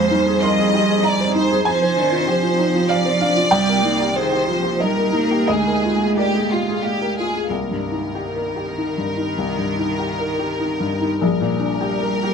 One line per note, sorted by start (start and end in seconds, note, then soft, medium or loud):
0.00 1.61 F2 medium
0.00 0.12 G#3 medium
0.00 3.51 C4 medium
0.00 1.65 D#4 medium
0.00 0.21 C5 medium
0.00 0.39 C5 medium
0.00 0.39 F5 medium
0.00 1.64 G#5 medium
0.10 1.64 G3 medium
0.10 0.37 D#4 medium
0.26 0.52 G#4 soft
0.42 0.59 A#4 medium
0.42 1.03 D#5 medium
0.42 1.00 C6 loud
0.59 0.83 G#4 medium
0.74 0.89 G4 soft
0.89 1.13 G#4 medium
1.03 1.34 D5 medium
1.03 1.28 D#5 medium
1.03 1.61 A#5 medium
1.20 1.44 C5 medium
1.34 1.59 D#4 medium
1.34 1.64 C5 medium
1.51 1.66 G#4 medium
1.65 1.99 F3 medium
1.65 3.52 F4 medium
1.65 2.88 C5 medium
1.65 3.52 D5 medium
1.65 2.85 G#5 loud
1.82 2.06 C5 medium
1.96 2.30 D#3 medium
1.96 2.21 D4 medium
2.11 2.36 F4 medium
2.27 3.51 F3 medium
2.27 2.43 G4 medium
2.43 2.68 F4 medium
2.58 2.74 D#4 soft
2.75 2.99 F4 medium
2.89 4.15 D5 medium
2.89 3.15 D5 medium
2.89 3.18 F5 medium
3.05 3.30 C5 medium
3.21 3.46 D4 medium
3.21 3.50 F5 medium
3.36 3.52 F4 medium
3.51 5.44 C2 medium
3.51 3.85 G3 medium
3.51 7.50 A#3 medium
3.51 5.47 D#4 medium
3.51 5.47 G4 medium
3.51 4.75 G5 loud
3.69 3.93 A#4 medium
3.83 4.15 A#3 medium
3.83 4.09 D#4 medium
4.00 4.25 G4 soft
4.16 4.49 D#3 medium
4.16 4.31 G#4 soft
4.16 4.80 C5 medium
4.32 4.57 G4 soft
4.47 4.83 F3 medium
4.47 4.63 F4 soft
4.63 4.89 G4 soft
4.80 5.14 G3 medium
4.80 5.48 A#4 medium
4.80 5.06 D#5 soft
4.96 5.23 A#4 soft
5.12 5.51 A#3 medium
5.12 5.40 D#4 soft
5.31 5.48 G4 soft
5.47 7.47 D2 medium
5.47 7.50 G#3 medium
5.47 7.30 G#3 medium
5.47 6.10 G#4 medium
5.47 6.12 D#5 medium
5.47 7.50 F5 medium
5.67 5.94 A#4 soft
5.85 6.11 F4 soft
6.01 6.27 G#4 soft
6.17 6.48 G4 medium
6.17 6.34 A#4 soft
6.17 6.79 D5 medium
6.35 6.60 G#4 soft
6.50 6.83 F4 soft
6.50 6.67 G4 soft
6.68 6.94 G#4 soft
6.83 7.17 G4 medium
6.83 7.11 F5 soft
7.02 7.28 A#4 soft
7.17 7.45 F4 soft
7.17 7.49 G#4 soft
7.35 7.51 G#4 soft
7.50 9.34 C2 soft
7.50 11.18 D#3 soft
7.50 11.18 A#4 soft
7.71 8.05 G2 soft
7.92 8.26 D#4 soft
8.15 8.48 G4 soft
8.35 8.69 A#4 soft
8.56 8.89 G4 soft
8.78 9.10 D#4 soft
8.98 9.30 G2 soft
9.17 9.50 D#4 soft
9.38 11.18 C2 soft
9.58 9.91 G2 soft
9.79 10.11 D#4 soft
9.99 10.31 G4 soft
10.18 10.51 A#4 soft
10.39 10.72 G4 soft
10.60 10.93 D#4 soft
10.80 11.13 G2 soft
11.01 11.22 D#4 soft
11.21 12.34 A#1 medium
11.21 12.34 G3 medium
11.21 12.34 A#4 medium
11.40 11.74 A#2 soft
11.60 11.94 D4 soft
11.81 12.15 G4 soft
12.01 12.34 A#4 soft
12.23 12.34 G4 soft